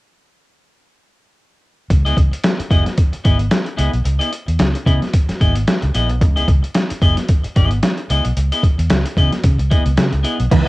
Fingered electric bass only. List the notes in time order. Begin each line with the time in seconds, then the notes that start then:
1.90 C#2
2.17 C#2
2.60 muted fingered electric bass stroke
2.71 F#1
3.26 G#1
3.79 C#2
3.94 B1
4.05 C#2
4.48 E2
4.60 C#2
4.86 C#3
5.29 muted fingered electric bass stroke
5.41 G#1
5.83 C#2
5.95 A#1
6.10 B1
6.22 C#2
6.48 C#2
6.91 muted fingered electric bass stroke
7.02 F#1
7.45 muted fingered electric bass stroke
7.56 G#1
8.10 C#2
8.25 B1
8.37 C#2
8.79 E2
8.90 C#2
9.17 C#3
9.44 C#3
9.59 C#2
9.86 C#2
9.98 C#3
10.13 C#2
10.40 B1
10.52 C#2